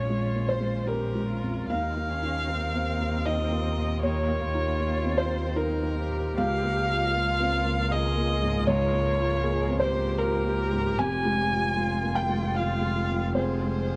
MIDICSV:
0, 0, Header, 1, 6, 480
1, 0, Start_track
1, 0, Tempo, 792602
1, 1031, Time_signature, 3, 2, 24, 8
1, 1505, Tempo, 770218
1, 3425, Tempo, 813008
1, 3905, Tempo, 763359
1, 6305, Tempo, 796813
1, 8574, End_track
2, 0, Start_track
2, 0, Title_t, "Violin"
2, 0, Program_c, 0, 40
2, 0, Note_on_c, 0, 73, 89
2, 299, Note_on_c, 0, 72, 80
2, 308, Note_off_c, 0, 73, 0
2, 531, Note_on_c, 0, 70, 78
2, 540, Note_off_c, 0, 72, 0
2, 1020, Note_off_c, 0, 70, 0
2, 1024, Note_on_c, 0, 77, 101
2, 1984, Note_on_c, 0, 75, 90
2, 1993, Note_off_c, 0, 77, 0
2, 2458, Note_off_c, 0, 75, 0
2, 2462, Note_on_c, 0, 73, 103
2, 3183, Note_on_c, 0, 72, 89
2, 3192, Note_off_c, 0, 73, 0
2, 3426, Note_on_c, 0, 70, 89
2, 3434, Note_off_c, 0, 72, 0
2, 3900, Note_off_c, 0, 70, 0
2, 3904, Note_on_c, 0, 77, 122
2, 4871, Note_on_c, 0, 75, 114
2, 4880, Note_off_c, 0, 77, 0
2, 5349, Note_on_c, 0, 73, 117
2, 5358, Note_off_c, 0, 75, 0
2, 6055, Note_off_c, 0, 73, 0
2, 6059, Note_on_c, 0, 72, 101
2, 6298, Note_on_c, 0, 70, 100
2, 6308, Note_off_c, 0, 72, 0
2, 6787, Note_on_c, 0, 80, 127
2, 6796, Note_off_c, 0, 70, 0
2, 7489, Note_on_c, 0, 79, 104
2, 7498, Note_off_c, 0, 80, 0
2, 7732, Note_on_c, 0, 77, 95
2, 7741, Note_off_c, 0, 79, 0
2, 8209, Note_off_c, 0, 77, 0
2, 8213, Note_on_c, 0, 72, 89
2, 8574, Note_off_c, 0, 72, 0
2, 8574, End_track
3, 0, Start_track
3, 0, Title_t, "Cello"
3, 0, Program_c, 1, 42
3, 60, Note_on_c, 1, 65, 78
3, 524, Note_on_c, 1, 67, 77
3, 534, Note_off_c, 1, 65, 0
3, 776, Note_off_c, 1, 67, 0
3, 785, Note_on_c, 1, 65, 77
3, 1037, Note_on_c, 1, 63, 72
3, 1046, Note_off_c, 1, 65, 0
3, 1266, Note_on_c, 1, 61, 82
3, 1275, Note_off_c, 1, 63, 0
3, 1504, Note_on_c, 1, 60, 84
3, 1513, Note_off_c, 1, 61, 0
3, 2462, Note_off_c, 1, 60, 0
3, 2466, Note_on_c, 1, 58, 71
3, 2708, Note_on_c, 1, 65, 91
3, 2717, Note_off_c, 1, 58, 0
3, 3423, Note_on_c, 1, 63, 83
3, 3432, Note_off_c, 1, 65, 0
3, 3659, Note_on_c, 1, 67, 94
3, 3668, Note_off_c, 1, 63, 0
3, 4388, Note_on_c, 1, 65, 89
3, 4397, Note_off_c, 1, 67, 0
3, 4871, Note_off_c, 1, 65, 0
3, 4881, Note_on_c, 1, 68, 96
3, 5355, Note_on_c, 1, 65, 87
3, 5365, Note_off_c, 1, 68, 0
3, 5825, Note_on_c, 1, 68, 101
3, 5834, Note_off_c, 1, 65, 0
3, 6064, Note_on_c, 1, 67, 100
3, 6074, Note_off_c, 1, 68, 0
3, 7247, Note_off_c, 1, 67, 0
3, 7250, Note_on_c, 1, 65, 98
3, 8189, Note_off_c, 1, 65, 0
3, 8214, Note_on_c, 1, 68, 84
3, 8574, Note_off_c, 1, 68, 0
3, 8574, End_track
4, 0, Start_track
4, 0, Title_t, "String section"
4, 0, Program_c, 2, 48
4, 0, Note_on_c, 2, 56, 68
4, 0, Note_on_c, 2, 61, 69
4, 0, Note_on_c, 2, 65, 63
4, 1005, Note_off_c, 2, 65, 0
4, 1006, Note_off_c, 2, 56, 0
4, 1006, Note_off_c, 2, 61, 0
4, 1026, Note_on_c, 2, 58, 72
4, 1028, Note_on_c, 2, 65, 70
4, 1028, Note_on_c, 2, 70, 73
4, 3880, Note_off_c, 2, 65, 0
4, 3896, Note_off_c, 2, 70, 0
4, 3902, Note_off_c, 2, 58, 0
4, 3903, Note_on_c, 2, 65, 87
4, 3903, Note_on_c, 2, 70, 81
4, 3904, Note_on_c, 2, 56, 82
4, 6763, Note_off_c, 2, 65, 0
4, 6763, Note_off_c, 2, 70, 0
4, 6784, Note_off_c, 2, 56, 0
4, 6790, Note_on_c, 2, 65, 88
4, 6792, Note_on_c, 2, 56, 87
4, 8574, Note_off_c, 2, 56, 0
4, 8574, Note_off_c, 2, 65, 0
4, 8574, End_track
5, 0, Start_track
5, 0, Title_t, "Felt piano"
5, 0, Program_c, 3, 0
5, 0, Control_c, 3, 64, 127
5, 0, Note_on_c, 3, 34, 77
5, 0, Note_on_c, 3, 56, 51
5, 0, Note_on_c, 3, 61, 61
5, 0, Note_on_c, 3, 73, 89
5, 58, Note_off_c, 3, 56, 0
5, 58, Note_on_c, 3, 56, 55
5, 153, Note_off_c, 3, 61, 0
5, 212, Note_on_c, 3, 58, 54
5, 270, Note_off_c, 3, 73, 0
5, 295, Note_on_c, 3, 72, 91
5, 310, Note_off_c, 3, 56, 0
5, 367, Note_on_c, 3, 56, 59
5, 372, Note_off_c, 3, 58, 0
5, 517, Note_off_c, 3, 72, 0
5, 532, Note_on_c, 3, 61, 55
5, 535, Note_on_c, 3, 70, 94
5, 627, Note_off_c, 3, 56, 0
5, 694, Note_on_c, 3, 56, 58
5, 797, Note_off_c, 3, 61, 0
5, 863, Note_on_c, 3, 41, 55
5, 963, Note_off_c, 3, 56, 0
5, 1004, Note_off_c, 3, 34, 0
5, 1006, Note_off_c, 3, 70, 0
5, 1025, Note_on_c, 3, 39, 72
5, 1029, Note_off_c, 3, 41, 0
5, 1030, Note_on_c, 3, 77, 97
5, 1043, Control_c, 3, 64, 0
5, 1137, Control_c, 3, 64, 127
5, 1189, Note_on_c, 3, 58, 58
5, 1345, Note_on_c, 3, 63, 58
5, 1441, Note_off_c, 3, 58, 0
5, 1501, Note_on_c, 3, 58, 55
5, 1600, Note_off_c, 3, 63, 0
5, 1664, Note_on_c, 3, 60, 56
5, 1761, Note_off_c, 3, 58, 0
5, 1827, Note_off_c, 3, 60, 0
5, 1829, Note_on_c, 3, 58, 59
5, 1963, Note_off_c, 3, 77, 0
5, 1984, Note_on_c, 3, 75, 99
5, 1988, Note_on_c, 3, 63, 62
5, 2085, Note_off_c, 3, 58, 0
5, 2147, Note_on_c, 3, 58, 62
5, 2245, Note_off_c, 3, 63, 0
5, 2311, Note_on_c, 3, 46, 54
5, 2406, Note_off_c, 3, 58, 0
5, 2443, Note_off_c, 3, 39, 0
5, 2444, Note_off_c, 3, 75, 0
5, 2468, Note_on_c, 3, 39, 82
5, 2470, Note_on_c, 3, 73, 102
5, 2481, Control_c, 3, 64, 0
5, 2567, Note_off_c, 3, 46, 0
5, 2575, Control_c, 3, 64, 127
5, 2626, Note_on_c, 3, 58, 58
5, 2788, Note_on_c, 3, 63, 63
5, 2882, Note_off_c, 3, 58, 0
5, 2945, Note_on_c, 3, 58, 66
5, 3042, Note_off_c, 3, 63, 0
5, 3102, Note_on_c, 3, 60, 55
5, 3159, Note_off_c, 3, 73, 0
5, 3183, Note_on_c, 3, 72, 109
5, 3199, Note_off_c, 3, 58, 0
5, 3261, Note_on_c, 3, 58, 61
5, 3262, Note_off_c, 3, 60, 0
5, 3407, Note_off_c, 3, 72, 0
5, 3421, Note_on_c, 3, 63, 72
5, 3423, Note_on_c, 3, 70, 101
5, 3516, Note_off_c, 3, 58, 0
5, 3576, Note_on_c, 3, 58, 71
5, 3677, Note_off_c, 3, 63, 0
5, 3739, Note_on_c, 3, 46, 59
5, 3838, Note_off_c, 3, 58, 0
5, 3880, Note_off_c, 3, 39, 0
5, 3880, Note_off_c, 3, 70, 0
5, 3902, Note_off_c, 3, 46, 0
5, 3903, Note_on_c, 3, 77, 113
5, 3904, Note_on_c, 3, 37, 94
5, 3918, Control_c, 3, 64, 0
5, 4035, Control_c, 3, 64, 127
5, 4068, Note_on_c, 3, 58, 68
5, 4224, Note_on_c, 3, 65, 71
5, 4326, Note_off_c, 3, 58, 0
5, 4388, Note_on_c, 3, 58, 66
5, 4484, Note_off_c, 3, 65, 0
5, 4550, Note_on_c, 3, 60, 63
5, 4646, Note_off_c, 3, 58, 0
5, 4711, Note_off_c, 3, 60, 0
5, 4713, Note_on_c, 3, 58, 64
5, 4847, Note_off_c, 3, 77, 0
5, 4870, Note_on_c, 3, 75, 110
5, 4871, Note_on_c, 3, 65, 76
5, 4969, Note_off_c, 3, 58, 0
5, 5032, Note_on_c, 3, 58, 79
5, 5128, Note_off_c, 3, 65, 0
5, 5193, Note_on_c, 3, 44, 65
5, 5288, Note_off_c, 3, 58, 0
5, 5326, Note_off_c, 3, 75, 0
5, 5327, Note_off_c, 3, 37, 0
5, 5346, Note_on_c, 3, 73, 115
5, 5349, Note_on_c, 3, 37, 96
5, 5364, Control_c, 3, 64, 0
5, 5448, Note_off_c, 3, 44, 0
5, 5461, Control_c, 3, 64, 127
5, 5504, Note_on_c, 3, 58, 70
5, 5664, Note_on_c, 3, 65, 72
5, 5760, Note_off_c, 3, 58, 0
5, 5826, Note_on_c, 3, 58, 73
5, 5918, Note_off_c, 3, 65, 0
5, 5985, Note_on_c, 3, 60, 65
5, 6034, Note_off_c, 3, 73, 0
5, 6054, Note_on_c, 3, 72, 113
5, 6078, Note_off_c, 3, 58, 0
5, 6141, Note_on_c, 3, 58, 69
5, 6142, Note_off_c, 3, 60, 0
5, 6282, Note_off_c, 3, 72, 0
5, 6297, Note_on_c, 3, 70, 111
5, 6300, Note_on_c, 3, 65, 74
5, 6398, Note_off_c, 3, 58, 0
5, 6458, Note_on_c, 3, 58, 71
5, 6560, Note_off_c, 3, 65, 0
5, 6623, Note_on_c, 3, 44, 71
5, 6722, Note_off_c, 3, 58, 0
5, 6761, Note_off_c, 3, 70, 0
5, 6762, Note_off_c, 3, 37, 0
5, 6781, Note_on_c, 3, 41, 95
5, 6782, Note_on_c, 3, 80, 116
5, 6786, Note_off_c, 3, 44, 0
5, 6800, Control_c, 3, 64, 0
5, 6897, Control_c, 3, 64, 127
5, 6942, Note_on_c, 3, 56, 72
5, 7097, Note_on_c, 3, 65, 69
5, 7192, Note_off_c, 3, 56, 0
5, 7251, Note_on_c, 3, 56, 71
5, 7349, Note_off_c, 3, 65, 0
5, 7413, Note_on_c, 3, 58, 61
5, 7465, Note_off_c, 3, 80, 0
5, 7484, Note_on_c, 3, 79, 124
5, 7505, Note_off_c, 3, 56, 0
5, 7565, Note_on_c, 3, 56, 67
5, 7571, Note_off_c, 3, 58, 0
5, 7708, Note_off_c, 3, 79, 0
5, 7721, Note_on_c, 3, 77, 101
5, 7722, Note_on_c, 3, 65, 69
5, 7821, Note_off_c, 3, 56, 0
5, 7881, Note_on_c, 3, 56, 62
5, 7981, Note_off_c, 3, 65, 0
5, 8040, Note_on_c, 3, 48, 55
5, 8142, Note_off_c, 3, 56, 0
5, 8183, Note_off_c, 3, 77, 0
5, 8184, Note_off_c, 3, 41, 0
5, 8202, Note_on_c, 3, 41, 80
5, 8204, Note_on_c, 3, 72, 89
5, 8224, Control_c, 3, 64, 0
5, 8306, Note_off_c, 3, 48, 0
5, 8329, Control_c, 3, 64, 127
5, 8369, Note_on_c, 3, 56, 61
5, 8536, Note_on_c, 3, 65, 59
5, 8574, Note_off_c, 3, 41, 0
5, 8574, Note_off_c, 3, 56, 0
5, 8574, Note_off_c, 3, 65, 0
5, 8574, Note_off_c, 3, 72, 0
5, 8574, End_track
6, 0, Start_track
6, 0, Title_t, "Double bass"
6, 0, Program_c, 4, 43
6, 0, Note_on_c, 4, 34, 70
6, 1028, Note_on_c, 4, 39, 83
6, 1037, Note_off_c, 4, 34, 0
6, 3901, Note_on_c, 4, 37, 95
6, 3910, Note_off_c, 4, 39, 0
6, 6782, Note_on_c, 4, 29, 93
6, 6791, Note_off_c, 4, 37, 0
6, 8574, Note_off_c, 4, 29, 0
6, 8574, End_track
0, 0, End_of_file